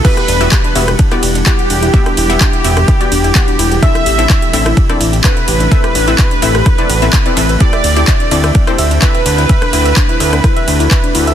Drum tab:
CC |x---------------|----------------|----------------|----------------|
RD |x-x-x-x-x-x-x-x-|x-x-x-x-x-x-x-x-|x-x-x-x-x-x---x-|x-x-x-x-x-x-x-x-|
HH |xxoxxxoxxxoxxxox|xxoxxxoxxxoxxxox|xxoxxxoxxxoxxxox|xxoxxxoxxxoxxxox|
CP |----x-------x---|----x-------x---|----x-------x---|----x-------x---|
SD |-r-----r-r------|-r-----rr-------|-r-----r-r------|-r-----rr-------|
BD |o---o---o---o---|o---o---o---o---|o---o---o---o---|o---o---o---o---|

CC |----------------|----------------|
RD |x-x---x-x-x-x-x-|x-x-x-x-x-x-x-x-|
HH |xxoxxxoxxxoxxxox|xxoxxxoxxxoxxxox|
CP |----x-------x---|----x-------x---|
SD |-r-----r-r------|-r-----rr-------|
BD |o---o---o---o---|o---o---o---o---|